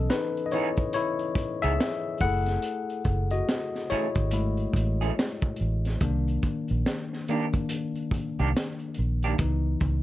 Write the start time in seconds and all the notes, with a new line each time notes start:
Already playing: E3 B3 C#4 A4 D#5
0.10 D#4 B4, snare, closed hi-hat
0.37 closed hi-hat
0.46 D#5
0.51 E3 B3 D#4 E4 G#4 C#5, closed hi-hat
0.77 kick, closed hi-hat
0.93 E4 C#5, closed hi-hat
1.19 closed hi-hat
1.35 muted fingered electric bass stroke, kick, closed hi-hat
1.62 C#2 E3 B3 D#4 G#4 E5, closed hi-hat
1.80 snare, closed hi-hat
2.18 F#1 A3 G#4 F#5, kick, open hi-hat
2.22 E4 A4
2.46 snare, closed hi-hat
2.62 closed hi-hat
2.90 closed hi-hat
3.05 F#1, kick, closed hi-hat
3.30 F#4 D#5, closed hi-hat
3.49 snare, closed hi-hat
3.75 snare, closed hi-hat
3.90 E3 A3 C#4 E4 G#4 C#5, muted fingered electric bass stroke, closed hi-hat
4.15 G#1, kick, closed hi-hat
4.31 G#3 A3 E4, closed hi-hat
4.57 closed hi-hat
4.73 A1, kick, closed hi-hat
5.01 E3 A3 C#4 G#4, closed hi-hat
5.19 snare, closed hi-hat
5.41 kick, closed hi-hat
5.56 closed hi-hat
5.61 A1
5.85 snare, closed hi-hat
6.01 C2 D#3 A#3 D4, kick, closed hi-hat
6.28 closed hi-hat
6.43 kick, closed hi-hat
6.68 A#1, closed hi-hat
6.86 snare, closed hi-hat
7.13 snare
7.28 D#3 A#3 D4 G4, closed hi-hat
7.53 kick, closed hi-hat
7.69 closed hi-hat
7.95 closed hi-hat
8.11 muted fingered electric bass stroke, kick, closed hi-hat
8.39 C2 D#3 A#3 D4 G4, closed hi-hat
8.56 snare, closed hi-hat
8.79 closed hi-hat
8.94 closed hi-hat
8.99 A#1
9.23 D#3 A#3 D4 G4, closed hi-hat
9.38 C#2 E3 B3 D#4, kick, closed hi-hat
9.80 C#2, kick, closed hi-hat